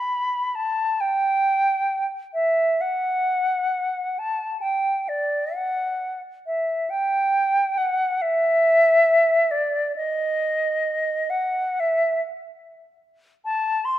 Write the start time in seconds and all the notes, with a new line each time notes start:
Already playing: B5
0.55 A5
1.00 G5
2.34 E5
2.81 F#5
4.19 A5
4.61 G5
5.09 D5
5.55 F#5
6.46 E5
6.90 G5
7.78 F#5
8.22 E5
9.51 D5
9.96 D#5
11.30 F#5
11.80 E5
13.45 A5
13.85 C6